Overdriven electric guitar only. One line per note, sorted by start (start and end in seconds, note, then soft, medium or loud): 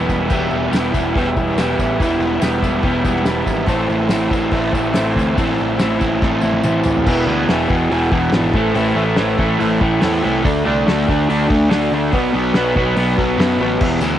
0.00 0.28 E3 medium
0.00 0.29 G3 medium
0.00 0.30 B3 medium
0.00 0.32 E4 medium
0.28 0.70 E3 loud
0.28 0.70 G3 loud
0.28 0.72 B3 loud
0.28 0.73 E4 loud
0.70 1.13 E3 medium
0.70 0.95 G3 medium
0.70 0.94 B3 medium
0.70 0.91 E4 medium
0.92 1.15 G3 medium
0.92 1.16 B3 medium
0.92 1.18 E4 medium
1.13 1.55 E3 medium
1.13 1.39 G3 loud
1.13 1.36 B3 loud
1.18 1.35 E4 loud
1.36 1.58 B3 medium
1.36 1.60 E4 medium
1.40 1.56 G3 medium
1.56 1.99 E3 medium
1.56 1.99 G3 medium
1.56 2.00 B3 medium
1.60 2.03 E4 medium
1.99 2.40 E3 medium
1.99 2.41 G3 medium
1.99 2.42 B3 loud
2.04 2.44 E4 loud
2.40 2.82 E3 medium
2.40 2.65 G3 medium
2.40 2.62 B3 medium
2.45 2.61 E4 medium
2.61 2.84 B3 medium
2.61 2.86 E4 medium
2.66 2.83 G3 medium
2.83 3.25 E3 loud
2.83 3.07 G3 medium
2.83 3.05 B3 loud
2.83 3.04 E4 loud
3.04 3.26 G3 medium
3.04 3.27 B3 medium
3.04 3.29 E4 medium
3.25 3.68 E3 medium
3.25 3.67 G3 medium
3.25 3.68 B3 medium
3.29 3.71 E4 medium
3.67 4.51 A2 medium
3.67 4.09 E3 loud
3.67 4.10 A3 loud
3.67 4.12 C4 loud
3.72 4.13 E4 loud
4.09 4.52 E3 medium
4.09 4.33 A3 medium
4.09 4.32 C4 medium
4.09 4.29 E4 medium
4.29 4.54 C4 medium
4.29 4.55 E4 medium
4.34 4.53 A3 medium
4.52 4.95 A2 loud
4.52 4.93 E3 medium
4.52 4.77 A3 medium
4.52 4.74 C4 loud
4.52 4.73 E4 loud
4.73 4.95 C4 medium
4.73 4.98 E4 medium
4.78 4.94 A3 medium
4.94 5.34 E3 medium
4.94 5.35 A3 medium
4.94 5.36 C4 medium
4.98 5.37 E4 medium
5.34 5.99 A2 medium
5.34 5.77 E3 loud
5.34 5.78 A3 loud
5.34 5.79 C4 loud
5.38 5.81 E4 loud
5.78 6.21 E3 medium
5.78 6.02 A3 medium
5.78 6.00 C4 medium
5.78 5.98 E4 medium
5.99 6.23 C4 medium
5.99 6.23 E4 medium
6.03 6.22 A3 medium
6.21 6.64 A2 loud
6.21 6.62 E3 loud
6.21 6.45 A3 loud
6.21 6.43 C4 loud
6.21 6.40 E4 loud
6.41 6.65 C4 medium
6.41 6.66 E4 medium
6.46 6.63 A3 medium
6.63 7.05 E3 medium
6.63 7.05 A3 medium
6.63 7.06 C4 medium
6.63 7.07 E4 medium
7.07 7.25 E2 loud
7.07 7.26 B2 loud
7.07 7.27 E3 loud
7.26 7.48 E2 medium
7.26 7.49 B2 medium
7.26 7.50 E3 loud
7.49 7.67 E2 loud
7.49 7.68 B2 loud
7.49 7.69 E3 loud
7.69 7.89 E2 medium
7.69 7.90 B2 medium
7.69 7.91 E3 medium
7.91 8.10 E2 loud
7.91 8.12 B2 loud
7.91 8.12 E3 loud
8.12 8.32 E2 medium
8.12 8.34 B2 medium
8.12 8.34 E3 medium
8.33 8.53 E2 medium
8.33 8.54 B2 loud
8.33 8.54 E3 loud
8.55 8.74 A2 loud
8.55 8.75 E3 medium
8.55 8.76 A3 loud
8.75 8.94 A2 loud
8.75 8.95 E3 loud
8.75 8.96 A3 loud
8.95 9.15 A2 medium
8.95 9.16 E3 medium
8.95 9.17 A3 loud
9.16 9.37 A2 medium
9.16 9.38 E3 loud
9.16 9.39 A3 loud
9.38 9.57 A2 medium
9.38 9.58 E3 medium
9.38 9.59 A3 loud
9.58 9.79 A2 loud
9.58 9.80 E3 loud
9.58 9.80 A3 loud
9.80 10.00 A2 medium
9.80 10.00 E3 medium
9.80 10.02 A3 loud
10.01 10.21 A2 loud
10.01 10.22 E3 loud
10.01 10.24 A3 loud
10.22 10.43 A2 medium
10.22 10.43 E3 loud
10.22 10.44 A3 loud
10.43 10.63 D3 loud
10.43 10.63 A3 loud
10.43 10.65 D4 loud
10.64 10.85 D3 medium
10.64 10.86 A3 medium
10.64 10.88 D4 loud
10.87 11.06 D3 loud
10.87 11.08 A3 loud
10.87 11.09 D4 loud
11.08 11.27 D3 medium
11.08 11.28 A3 loud
11.08 11.29 D4 loud
11.28 11.47 D3 loud
11.28 11.48 A3 loud
11.28 11.49 D4 loud
11.48 11.68 D3 medium
11.48 11.69 A3 medium
11.48 11.70 D4 loud
11.70 11.92 D3 loud
11.70 11.93 A3 loud
11.70 11.94 D4 loud
11.93 12.12 D3 medium
11.93 12.12 A3 loud
11.93 12.13 D4 loud
12.13 12.32 B2 medium
12.13 12.33 F#3 loud
12.13 12.35 B3 loud
12.33 12.54 B2 medium
12.33 12.55 F#3 loud
12.33 12.56 B3 loud
12.55 12.74 B2 loud
12.55 12.75 F#3 loud
12.55 12.75 B3 loud
12.75 12.95 B2 medium
12.75 12.96 F#3 medium
12.75 12.96 B3 loud
12.96 13.15 B2 loud
12.96 13.16 F#3 loud
12.96 13.17 B3 loud
13.16 13.37 B2 medium
13.16 13.38 F#3 medium
13.16 13.38 B3 medium
13.38 13.59 B2 loud
13.38 13.59 F#3 loud
13.38 13.61 B3 loud
13.60 13.80 B2 medium
13.60 13.80 F#3 medium
13.60 13.81 B3 loud
13.81 14.00 E2 medium
13.81 14.01 B2 loud
13.81 14.02 E3 loud
14.01 14.19 E2 medium
14.01 14.19 B2 medium
14.01 14.19 E3 loud